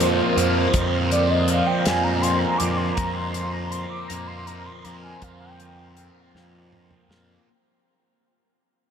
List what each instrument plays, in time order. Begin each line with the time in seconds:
Already playing: picked electric bass F2, distorted electric guitar F2 A#3 C4, tonewheel organ A#3 C4 F4 A#4 C5, analog synth lead C5
0.00 distorted electric guitar F3, closed hi-hat
0.36 picked electric bass F2, distorted electric guitar A#3, closed hi-hat
0.73 distorted electric guitar F2, picked electric bass F2, kick, closed hi-hat
1.11 distorted electric guitar F3, analog synth lead D5, closed hi-hat
1.30 analog synth lead D#5
1.48 distorted electric guitar C4, analog synth lead F5, closed hi-hat
1.67 analog synth lead G5
1.85 picked electric bass F2, distorted electric guitar A#3, analog synth lead G#5, snare, closed hi-hat
2.04 analog synth lead A#5
2.22 distorted electric guitar F3, analog synth lead C6, closed hi-hat
2.39 analog synth lead A#5
2.58 picked electric bass F2, distorted electric guitar A#3, analog synth lead D6, closed hi-hat
2.77 analog synth lead C6
2.94 picked electric bass F2, analog synth lead A#5, kick, closed hi-hat
2.98 distorted electric guitar F2
3.14 analog synth lead C6
3.33 distorted electric guitar F3, analog synth lead C6, closed hi-hat
3.52 analog synth lead A#5
3.71 distorted electric guitar C4, analog synth lead C6, closed hi-hat
3.89 analog synth lead D6
4.08 picked electric bass F2, distorted electric guitar A#3, analog synth lead A#5, closed hi-hat
4.27 analog synth lead C6
4.47 distorted electric guitar F3, analog synth lead A#5, closed hi-hat
4.66 analog synth lead C6
4.84 picked electric bass F2, distorted electric guitar A#3, analog synth lead A#5, closed hi-hat
5.03 analog synth lead G#5
5.22 picked electric bass F2, distorted electric guitar F2, analog synth lead F5, kick, closed hi-hat
5.41 analog synth lead G5
5.60 distorted electric guitar F3, closed hi-hat
5.97 distorted electric guitar C4, closed hi-hat
6.35 picked electric bass F2, distorted electric guitar A#3, snare
6.72 distorted electric guitar F3, mid tom
6.91 mid tom
7.09 picked electric bass F2, distorted electric guitar A#3, snare